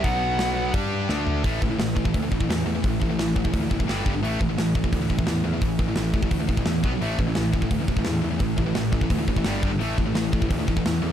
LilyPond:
<<
  \new Staff \with { instrumentName = "Lead electric guitar" } { \time 4/4 \key g \mixolydian \tempo 4 = 172 fis''2 r2 | r1 | r1 | r1 |
r1 | r1 | r1 | r1 | }
  \new Staff \with { instrumentName = "Distorted electric guitar" } { \clef bass \time 4/4 \key g \mixolydian <b, fis b>2 <g d' g'>4 <d a d'>4 | <a, e a>8 <a, e>16 <a, e>16 <a, e>8 <a, e>16 <a, e>16 <a, e>16 <a, e>16 <a, e>16 <a, e>16 <a, e>8 <a, e>16 <a, e>16 | <a, e>8 <a, e>16 <a, e>16 <a, e>8 <a, e>16 <a, e>16 <a, e>16 <a, e>16 <a, e>16 <a, e>16 <g, d g>8 <g, d g>16 <g, d>16 | <a, e a>8 <a, e>16 <a, e>16 <a, e>8 <a, e>16 <a, e>16 <a, e>16 <a, e>16 <a, e>16 <a, e>16 <a, e>8 <a, e>16 <a, e>16 |
<a, e>8 <a, e>16 <a, e>16 <a, e>8 <a, e>16 <a, e>16 <a, e>16 <a, e>16 <a, e>16 <a, e>16 <a, e>8 <b, fis b>16 <b, fis>16 | <a, e a>8 <a, e>16 <a, e>16 <a, e>8 <a, e>16 <a, e>16 <a, e>16 <a, e>16 <a, e>16 <a, e>16 <a, e>8 <a, e>16 <a, e>16 | <a, e>8 <a, e>16 <a, e>16 <a, e>8 <a, e>16 <a, e>16 <a, e>16 <a, e>16 <a, e>16 <a, e>16 <g, d g>8 <g, d g>16 <g, d>16 | <a, e a>8 <a, e>16 <a, e>16 <a, e>8 <a, e>16 <a, e>16 <a, e>16 <a, e>16 <a, e>16 <a, e>16 <a, e>8 <a, e>16 r16 | }
  \new Staff \with { instrumentName = "Distorted electric guitar" } { \clef bass \time 4/4 \key g \mixolydian <b, fis b>2 <g d' g'>4 <d a d'>4 | <a, e a>8 <a, e>16 <a, e>16 <a, e>8 <a, e>16 <a, e>16 <a, e>16 <a, e>16 <a, e>16 <a, e>16 <a, e>8 <a, e>16 <a, e>16 | <a, e>8 <a, e>16 <a, e>16 <a, e>8 <a, e>16 <a, e>16 <a, e>16 <a, e>16 <a, e>16 <a, e>16 <g, d g>8 <g, d g>16 <g, d>16 | <a, e a>8 <a, e>16 <a, e>16 <a, e>8 <a, e>16 <a, e>16 <a, e>16 <a, e>16 <a, e>16 <a, e>16 <a, e>8 <a, e>16 <a, e>16 |
<a, e>8 <a, e>16 <a, e>16 <a, e>8 <a, e>16 <a, e>16 <a, e>16 <a, e>16 <a, e>16 <a, e>16 <a, e>8 <b, fis b>16 <b, fis>16 | <a, e a>8 <a, e>16 <a, e>16 <a, e>8 <a, e>16 <a, e>16 <a, e>16 <a, e>16 <a, e>16 <a, e>16 <a, e>8 <a, e>16 <a, e>16 | <a, e>8 <a, e>16 <a, e>16 <a, e>8 <a, e>16 <a, e>16 <a, e>16 <a, e>16 <a, e>16 <a, e>16 <g, d g>8 <g, d g>16 <g, d>16 | <a, e a>8 <a, e>16 <a, e>16 <a, e>8 <a, e>16 <a, e>16 <a, e>16 <a, e>16 <a, e>16 <a, e>16 <a, e>8 <a, e>16 r16 | }
  \new Staff \with { instrumentName = "Picked electric bass" } { \clef bass \time 4/4 \key g \mixolydian b,,2 g,4 d,4 | a,,8 a,,8 a,,4 d,8 a,,8 e,8 e,8 | a,,8 a,,8 a,,4 d,8 fis,,8 g,,8 g,,8 | a,,8 a,,8 a,,4 d,8 a,,8 e,8 e,8 |
a,,8 a,,8 a,,4 d,8 a,,8 e,8 b,,8 | a,,8 a,,8 a,,4 d,8 a,,8 e,8 e,8 | a,,8 a,,8 a,,4 d,8 a,,8 g,,8 g,,8 | a,,8 a,,8 a,,4 d,8 a,,8 e,8 e,8 | }
  \new DrumStaff \with { instrumentName = "Drums" } \drummode { \time 4/4 <hho bd>4 <hho sn>4 <hho bd>4 sn8 tomfh8 | <hho bd>8 bd8 <hho sn>8 bd16 bd16 <hho bd>8 bd16 bd16 <hho sn>4 | <hho bd>8 bd8 <hho sn>8 bd16 bd16 <hho bd>8 bd16 bd16 <hho sn>8 bd8 | hho8 bd8 <hho sn>8 bd16 bd16 <hho bd>8 bd16 bd16 <hho sn>4 |
<hho bd>8 bd8 <hho sn>8 bd16 bd16 <hho bd>8 bd16 bd16 <hho sn>8 bd8 | hho8 bd8 <hho sn>8 bd16 bd16 <hho bd>8 bd16 bd16 <hho sn>4 | <hho bd>8 bd8 <hho sn>8 bd16 bd16 <hho bd>8 bd16 bd16 <hho sn>8 bd8 | hho8 bd8 <hho sn>8 bd16 bd16 <hho bd>8 bd16 bd16 <hho sn>4 | }
>>